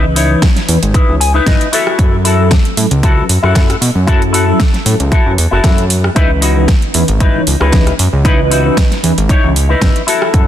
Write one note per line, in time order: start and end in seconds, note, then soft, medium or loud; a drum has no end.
0.00 0.35 C#2 medium
0.00 0.27 E3 medium
0.00 0.27 C#4 medium
0.00 0.27 B4 medium
0.00 0.27 D#5 medium
0.16 0.42 D#4 medium
0.16 0.43 E4 medium
0.16 0.43 C#5 medium
0.16 open hi-hat loud
0.30 0.44 E3 medium
0.30 0.44 C#4 medium
0.30 0.44 D#4 medium
0.30 0.45 B4 loud
0.42 kick loud
0.42 snare loud
0.42 closed hi-hat medium
0.56 snare soft
0.56 closed hi-hat soft
0.68 0.77 E2 medium
0.68 0.78 E3 medium
0.68 0.78 C#4 medium
0.68 0.78 D#4 medium
0.68 0.79 B4 loud
0.68 muted clean electric guitar stroke soft
0.68 open hi-hat loud
0.83 0.99 G#1 medium
0.83 closed hi-hat soft
0.94 1.14 D#4 medium
0.94 1.15 E4 medium
0.94 1.15 B4 medium
0.94 kick loud
0.94 closed hi-hat medium
1.08 1.40 C#2 medium
1.08 1.17 E3 medium
1.08 1.17 C#4 medium
1.08 1.17 D#4 medium
1.08 1.17 C#5 loud
1.20 1.34 G#5 medium
1.20 open hi-hat loud
1.34 1.67 D#4 medium
1.34 1.67 E4 medium
1.34 1.67 B4 medium
1.34 1.46 E5 medium
1.46 1.56 G#1 loud
1.46 1.56 C#4 medium
1.46 1.71 D#5 medium
1.46 kick loud
1.46 snare loud
1.46 closed hi-hat medium
1.61 closed hi-hat soft
1.73 2.15 E4 medium
1.73 2.16 F#4 medium
1.73 2.16 A4 loud
1.73 1.98 E5 medium
1.73 open hi-hat loud
1.87 cross-stick medium
1.99 2.57 F#2 loud
1.99 2.36 F#3 medium
1.99 2.36 C#4 medium
1.99 2.36 A4 medium
1.99 kick loud
1.99 closed hi-hat medium
2.25 2.51 E4 medium
2.25 2.51 F#4 medium
2.25 2.52 A4 medium
2.25 open hi-hat loud
2.39 2.53 F#3 medium
2.39 2.53 C#4 medium
2.39 2.53 A4 loud
2.51 kick loud
2.51 snare loud
2.51 closed hi-hat medium
2.65 closed hi-hat soft
2.77 2.86 A2 medium
2.77 2.87 F#3 loud
2.77 2.87 C#4 medium
2.77 2.87 E4 medium
2.77 2.87 A4 loud
2.77 muted clean electric guitar stroke soft
2.77 open hi-hat loud
2.91 3.22 C#2 medium
2.91 closed hi-hat soft
3.03 3.23 E4 medium
3.03 3.24 F#4 medium
3.03 3.24 A4 loud
3.03 kick loud
3.03 closed hi-hat medium
3.17 3.26 F#3 medium
3.17 3.26 C#4 medium
3.17 3.26 E4 medium
3.17 3.26 B4 medium
3.29 3.38 F#2 medium
3.29 open hi-hat loud
3.43 3.75 F#2 medium
3.43 3.75 E4 medium
3.43 3.76 F#4 medium
3.43 3.76 A4 loud
3.43 cross-stick medium
3.55 3.65 F#3 medium
3.55 3.65 C#4 medium
3.55 3.66 E4 medium
3.55 3.66 A4 medium
3.55 kick loud
3.55 snare loud
3.55 closed hi-hat medium
3.70 cross-stick medium
3.70 closed hi-hat soft
3.81 3.90 B2 medium
3.81 open hi-hat loud
3.95 4.53 F#2 medium
4.07 4.44 F#3 medium
4.07 4.44 C#4 medium
4.07 4.21 E4 loud
4.07 4.44 E4 medium
4.07 4.21 F#4 medium
4.07 4.45 A4 medium
4.07 4.22 A4 loud
4.07 kick loud
4.07 closed hi-hat medium
4.22 closed hi-hat soft
4.33 4.59 E4 medium
4.33 4.60 F#4 medium
4.33 4.60 A4 medium
4.33 open hi-hat loud
4.47 4.62 F#3 medium
4.47 4.62 C#4 medium
4.47 4.62 E4 medium
4.47 4.62 A4 loud
4.60 kick loud
4.60 snare loud
4.60 closed hi-hat medium
4.74 snare soft
4.74 closed hi-hat soft
4.85 4.95 A2 loud
4.85 4.96 F#3 loud
4.85 4.96 C#4 medium
4.85 4.96 E4 medium
4.85 4.96 A4 loud
4.85 muted clean electric guitar stroke soft
4.85 open hi-hat loud
5.00 5.16 C#2 medium
5.00 closed hi-hat soft
5.11 5.32 E4 medium
5.11 5.32 F#4 medium
5.11 5.32 A4 medium
5.11 kick loud
5.11 closed hi-hat medium
5.25 5.38 F#2 medium
5.25 5.34 F#3 medium
5.25 5.35 C#4 medium
5.25 5.35 E4 medium
5.25 5.35 B4 loud
5.38 5.47 E2 medium
5.38 open hi-hat loud
5.51 5.60 F#1 medium
5.51 5.84 E4 medium
5.51 5.84 F#4 medium
5.51 5.85 A4 loud
5.64 6.09 F#2 medium
5.64 5.74 F#3 medium
5.64 5.74 C#4 medium
5.64 5.74 E4 medium
5.64 5.74 A4 medium
5.64 kick loud
5.64 snare loud
5.64 closed hi-hat medium
5.78 closed hi-hat soft
5.90 open hi-hat loud
6.04 cross-stick medium
6.15 6.74 C#2 loud
6.15 6.53 E3 medium
6.15 6.53 C#4 medium
6.15 6.30 D#4 loud
6.15 6.30 E4 loud
6.15 6.53 B4 medium
6.15 6.31 B4 loud
6.15 6.53 D#5 medium
6.15 kick loud
6.15 closed hi-hat medium
6.41 6.68 D#4 medium
6.41 6.68 E4 medium
6.41 6.69 F#4 medium
6.41 open hi-hat loud
6.56 6.70 E3 medium
6.56 6.70 C#4 medium
6.56 6.71 D#4 medium
6.56 6.71 B4 loud
6.68 kick loud
6.68 snare loud
6.68 closed hi-hat medium
6.82 closed hi-hat soft
6.94 7.03 E2 medium
6.94 7.04 E3 loud
6.94 7.04 C#4 medium
6.94 7.04 D#4 medium
6.94 7.05 B4 loud
6.94 muted clean electric guitar stroke soft
6.94 open hi-hat loud
7.08 7.40 G#1 medium
7.08 closed hi-hat soft
7.20 7.40 D#4 medium
7.20 7.41 E4 medium
7.20 7.41 B4 medium
7.20 kick loud
7.20 closed hi-hat medium
7.34 7.43 E3 medium
7.34 7.43 C#4 medium
7.34 7.43 D#4 medium
7.34 7.44 C#5 loud
7.47 7.56 C#2 medium
7.47 open hi-hat loud
7.60 7.92 C#2 medium
7.60 7.93 D#4 medium
7.60 7.93 E4 medium
7.60 7.93 B4 loud
7.60 cross-stick medium
7.72 7.83 E3 medium
7.72 7.83 C#4 medium
7.72 7.83 D#4 medium
7.72 7.83 B4 medium
7.72 kick loud
7.72 snare loud
7.72 closed hi-hat medium
7.87 cross-stick medium
7.87 closed hi-hat soft
7.99 8.08 F#2 medium
7.99 open hi-hat loud
8.13 8.70 C#2 medium
8.24 8.61 E3 medium
8.24 8.62 C#4 medium
8.24 8.39 D#4 loud
8.24 8.39 E4 loud
8.24 8.62 B4 medium
8.24 8.39 B4 loud
8.24 8.62 D#5 medium
8.24 kick loud
8.24 closed hi-hat medium
8.51 8.77 D#4 medium
8.51 8.77 E4 medium
8.51 8.78 F#4 medium
8.51 open hi-hat loud
8.64 8.79 E3 medium
8.64 8.79 C#4 medium
8.64 8.79 D#4 medium
8.64 8.79 B4 loud
8.77 kick loud
8.77 snare loud
8.77 closed hi-hat medium
8.91 snare soft
8.91 closed hi-hat soft
9.03 9.12 E2 loud
9.03 9.13 E3 loud
9.03 9.13 C#4 medium
9.03 9.13 D#4 medium
9.03 9.14 B4 loud
9.03 muted clean electric guitar stroke soft
9.03 open hi-hat loud
9.18 9.34 G#1 medium
9.18 closed hi-hat soft
9.29 9.49 D#4 medium
9.29 9.50 E4 medium
9.29 9.50 C#5 medium
9.29 kick loud
9.29 closed hi-hat medium
9.43 9.75 C#2 medium
9.43 9.52 E3 medium
9.43 9.52 C#4 medium
9.43 9.52 D#4 medium
9.43 9.52 C#5 loud
9.56 open hi-hat medium
9.69 10.01 D#4 medium
9.69 10.02 E4 medium
9.69 10.02 B4 medium
9.81 9.90 G#1 medium
9.81 9.91 E3 medium
9.81 9.91 C#4 medium
9.81 9.92 D#4 medium
9.81 9.92 B4 medium
9.81 kick loud
9.81 snare loud
9.81 closed hi-hat medium
9.96 closed hi-hat medium
10.07 10.47 E4 medium
10.07 10.47 F#4 medium
10.07 10.47 A4 loud
10.07 open hi-hat loud
10.22 cross-stick medium
10.33 10.47 F#2 loud
10.33 10.47 F#3 medium
10.33 10.47 C#4 medium
10.33 10.47 E4 medium
10.33 10.47 A4 medium
10.33 kick loud
10.33 closed hi-hat medium